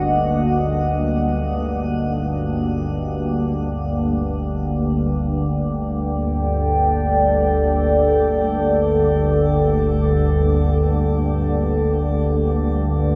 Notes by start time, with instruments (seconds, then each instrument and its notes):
Already playing: synth drone G1 D2, analog synth pad A#3 F#4 D#5 F#5
3.61 synth drone G1 D2
5.14 analog synth pad A4
5.18 analog synth pad G5
5.67 analog synth pad D5